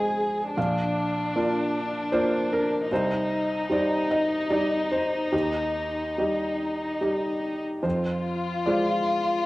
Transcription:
Already playing: F2 G#3 G#4 C5 D5 D#5
0.57 A#1 D4 F5
1.36 A#3 F4 D5
2.12 A#3 F4 C5 D5
2.53 A#4
2.91 C2 D#4 C5
3.70 G3 D#4 C5 D5
4.11 D#5
4.50 G3 D#4 D5
4.92 C5
5.32 D#2 G4
6.18 G3 G4 D#5
7.01 G3 G4 D#5
7.83 F2 F4 C5
8.66 G#3 F4 C5 D5

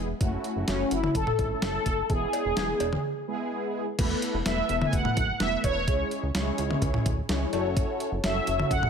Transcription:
Already playing: E1
0.21 F#1 A3 C#4 E4 F#4, kick, closed hi-hat
0.44 closed hi-hat
0.56 F#1
0.68 F#1 C#4, snare, closed hi-hat
0.91 F#1 E4, closed hi-hat
1.04 mid tom
1.15 F#1 A4, kick, closed hi-hat
1.27 mid tom
1.39 G#1 A3 C#4 E4 A4, kick, closed hi-hat
1.62 F#1 A4, snare, closed hi-hat
1.86 F#1, kick, closed hi-hat
2.10 E1 G#3 B3 E4 G#4, kick, closed hi-hat
2.33 closed hi-hat, cowbell
2.45 E1
2.57 E1, snare, closed hi-hat
2.80 E1, closed hi-hat, cowbell
2.93 mid tom
3.28 G#3 B3 E4 G#4
3.99 E1 A3 B3 E4 A4 B4, kick, closed hi-hat, crash
4.22 closed hi-hat
4.34 E1
4.46 E1 A3 B3 E4 A4 B4 E5, snare, closed hi-hat
4.69 E1, closed hi-hat
4.82 mid tom
4.86 G#5
4.93 E1 F#5, kick, closed hi-hat
5.05 mid tom
5.17 F#1, kick, closed hi-hat
5.40 E1 A3 B3 E4 A4 B4 E5, snare, closed hi-hat
5.64 E1 C#5, kick, closed hi-hat, cowbell
5.88 C#2 G#3 C#4 E4 G#4 C#5, kick, closed hi-hat
6.11 closed hi-hat
6.23 C#2
6.35 C#2 G#3 C#4 E4 G#4 C#5, snare, closed hi-hat
6.58 C#2, closed hi-hat
6.71 mid tom
6.82 C#2, kick, closed hi-hat
6.94 mid tom
7.06 D2, kick, closed hi-hat
7.29 C#2 G#3 C#4 E4 G#4 C#5, snare, closed hi-hat
7.53 F#1 C#4 E4 F#4 A4 C#5, closed hi-hat, cowbell
7.77 kick, closed hi-hat
8.00 closed hi-hat
8.12 F#1
8.24 F#1 C#4 E4 F#4 A4 C#5 E5, snare, closed hi-hat
8.47 F#1, closed hi-hat
8.60 mid tom
8.71 F#1 F#5, kick, closed hi-hat
8.83 mid tom

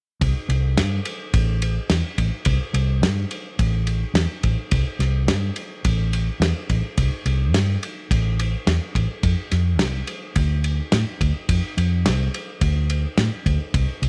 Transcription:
0.21 C2, kick, ride
0.49 C2, ride
0.77 G2, snare, ride
1.05 ride
1.34 A1, kick, ride
1.62 ride
1.90 E2, snare, ride
2.18 A1, kick, ride
2.45 C2, kick, ride
2.74 C2, ride
3.02 G2, snare, ride
3.31 ride
3.59 A1, kick, ride
3.87 ride
4.14 E2, snare, ride
4.43 A1, kick, ride
4.71 C2, kick, ride
4.99 C2, snare, ride
5.27 G2, snare, ride
5.56 ride
5.85 A1, kick, ride
6.13 ride
6.40 E2, snare, ride
6.69 A1, kick, ride
6.98 C2, kick, ride
7.26 C2, ride
7.53 G2, snare, ride
7.83 ride
8.11 A1, kick, ride
8.39 ride
8.67 E2, snare, ride
8.95 A1, kick, ride
9.23 F2, kick, ride
9.51 F2, snare, ride
9.79 C2, snare, ride
10.07 ride
10.36 D2, kick, ride
10.64 ride
10.92 A2, snare, ride
11.21 D2, kick, ride
11.49 F2, kick, ride
11.77 F2, ride
12.06 C2, snare, ride
12.34 ride
12.61 D2, kick, ride
12.90 ride
13.18 A2, snare, ride
13.46 D2, kick, ride
13.74 C2, kick, ride
14.02 C2, ride

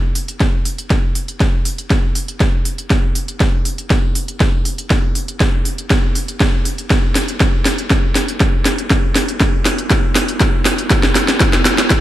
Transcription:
0.15 open hi-hat
0.28 closed hi-hat
0.40 kick, snare, closed hi-hat
0.65 open hi-hat
0.78 closed hi-hat
0.90 kick, snare, closed hi-hat
1.15 open hi-hat
1.28 closed hi-hat
1.40 kick, snare, closed hi-hat
1.65 open hi-hat
1.78 closed hi-hat
1.90 kick, snare, closed hi-hat
2.15 open hi-hat
2.28 closed hi-hat
2.40 kick, snare, closed hi-hat
2.65 open hi-hat
2.78 closed hi-hat
2.90 kick, snare, closed hi-hat
3.15 open hi-hat
3.28 closed hi-hat
3.40 kick, snare, closed hi-hat
3.65 open hi-hat
3.78 closed hi-hat
3.90 kick, snare, closed hi-hat
4.15 open hi-hat
4.28 closed hi-hat
4.40 kick, snare, closed hi-hat
4.65 open hi-hat
4.78 closed hi-hat
4.90 kick, snare, closed hi-hat
5.15 open hi-hat
5.28 closed hi-hat
5.40 kick, snare, closed hi-hat
5.65 open hi-hat
5.78 closed hi-hat
5.90 kick, snare, closed hi-hat
6.15 open hi-hat
6.28 closed hi-hat
6.40 kick, snare, closed hi-hat
6.65 open hi-hat
6.78 closed hi-hat
6.90 kick, snare, closed hi-hat
7.15 snare, open hi-hat
7.28 closed hi-hat
7.40 kick, snare, closed hi-hat
7.65 snare, open hi-hat
7.78 closed hi-hat
7.90 kick, snare, closed hi-hat
8.15 snare, open hi-hat
8.28 closed hi-hat
8.40 kick, snare, closed hi-hat
8.65 snare, open hi-hat
8.78 closed hi-hat
8.90 kick, snare, closed hi-hat
9.15 snare, open hi-hat
9.28 closed hi-hat
9.40 kick, snare, closed hi-hat
9.65 snare, open hi-hat
9.78 closed hi-hat
9.90 kick, snare, closed hi-hat
10.15 snare, open hi-hat
10.28 closed hi-hat
10.40 kick, snare, closed hi-hat
10.65 snare, open hi-hat
10.78 closed hi-hat
10.90 kick, snare, closed hi-hat
11.03 snare
11.15 snare, open hi-hat
11.28 snare, closed hi-hat
11.40 kick, snare, closed hi-hat
11.53 snare
11.65 snare, open hi-hat
11.78 snare, closed hi-hat
11.90 kick, snare, closed hi-hat

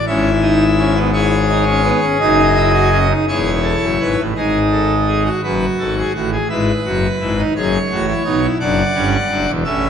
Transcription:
0.07 G#1 G#2 C#4 E4 E5
0.42 D#4
0.78 C#4
0.95 B3
1.13 E4 G#4 C#5
1.49 D#4
1.66 C#4
1.83 B3
2.02 C#4
2.20 F#1 F#2 D#4 D#5
2.56 E4
2.73 F#4
2.92 C#4
3.10 D#4
3.28 E1 E2 E4 G#4 C#5
3.63 A4
3.81 F#1 F#2
4.00 G#1 G#2 B4
4.18 A1 A2
4.35 G#1 G#2 D#4 G#4
4.72 A4
5.07 G#4
5.25 F#4
5.43 F#1 F#2 F#4 B4
5.79 G#1 G#2 A4
5.97 G#4
6.14 A1 A2 F#4
6.32 G#4
6.49 G#1 G#2 E4 B4
6.84 F#1 F#2 F#4
7.20 G#1 G#2 E4
7.38 D#4
7.56 F#1 F#2 G#4 C#5
7.91 A1 A2 F#4
8.08 E4
8.25 B1 B2 D#4
8.42 E4
8.60 F#1 F#2 D4 D5 F#5
8.94 G1 G2 C#4
9.30 F#1 F#2 D4
9.47 E1 E2
9.65 A1 A2 C#4 E5

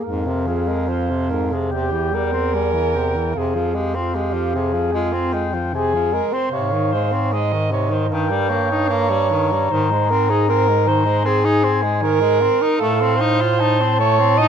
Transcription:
0.03 F2 G#2 A#4 F5
0.26 C3
0.46 F3 G#4
0.68 G#3 A#4
0.88 F3 C5
1.10 C3
1.30 G#2 A#4
1.52 C3 G#4
1.71 E2 C3 G4 G5
1.91 E3
2.12 G3 A#4
2.32 C4
2.53 G3 G#5
2.73 E3
2.95 C3 G5
3.15 E3
3.34 F2 C3 G#4 F5
3.55 F3
3.74 G#3 G4
3.95 C4 F4
4.14 G#3 G4
4.33 F3
4.54 C3 G#4
4.73 F3
4.92 G#3 F4 G#5
5.13 C4
5.33 G#3 G5
5.54 F3
5.73 C3 G#4 G#5
5.94 F3
6.13 G#3 A#4
6.32 C4 C5
6.51 G#2 C3 C#5 F5
6.72 D#3
6.92 G#3 C5
7.12 C4 C#5
7.33 G#3 D#5
7.52 D#3
7.71 C3 C#5
7.90 D#3 C5
8.08 G2 D#3 A#4
8.14 G5
8.30 G3
8.49 A#3 C#5
8.70 D#4
8.89 A#3 A#5
9.09 G3
9.30 D#3
9.52 G3
9.70 G#2 D#3 C5
9.91 G#3
10.10 C4 A#4
10.29 D#4 G#4
10.49 C4 A#4
10.68 G#3
10.87 D#3 C5
11.05 G#3
11.24 C4 G#4 G#5
11.44 D#4
11.63 C4
11.83 G#3
12.02 D#3 A#4
12.21 G#3
12.41 C4
12.61 D#4
12.79 A2 A3 A4 F5
13.01 C4
13.16 D#4 C5
13.41 F4
13.59 D#4 A5
13.80 C4
13.99 A3 C#5
14.19 C4
14.38 D#4 D#5

